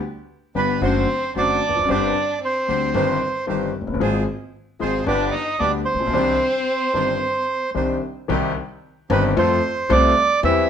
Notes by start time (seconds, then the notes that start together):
0.55 G1 G2 D3 G3 B3 D4 G4 B4
0.81 F#1 F#2 D3 F#3 A3 C4 D4 F#4 C5
1.35 F#1 F#2 D3 F#3 A3 C4 D4 F#4 C5 D5
1.69 E1 E2
1.75 F1 F2
1.82 F#1 F#2
1.88 G1 G2 D3 G3 C4 D4 G4 C5 D5
2.43 C4 C5
2.68 D2 D3 G3 C4 D4 G4 C5
2.94 G1 G2 D#3 G3 C4 D#4 G4 C5
3.47 G1 G2 D#3 G3 C4 D#4 G4 C5
3.81 F1
3.87 F#1
3.94 G1
4.00 G#1 G#2 F3 G#3 C4 F4 G#4 C5
4.79 G#1 G#2 F3 G#3 C4 F4 G#4 C5
5.06 G1 G2 D3 G3 B3 D4 G4 B4 D5
5.31 D#4 D#5
5.59 D2 D3 G3 B3 D4 G4 B4 D5
5.85 C4 C5
5.94 A1
6.00 A#1
6.07 B1
6.13 C2 C3 D#3 C4 D4 D#4 G4 C5
6.94 G1 G2 D#3 C4 D4 D#4 G4 C5
7.75 C2 C3 D#3 C4 D4 D#4 G4 C5
8.28 C2 C3 D#3 G3 C4 D#4 G4
9.10 G1 G2 D#3 G3 C4 D#4 G4 B4
9.36 F2 F3 A3 C4 F4 A4 C5
9.90 C2 C3 F3 A3 C4 F4 A4 D5
10.43 E2 E3 G3 C4 E4 G4 E5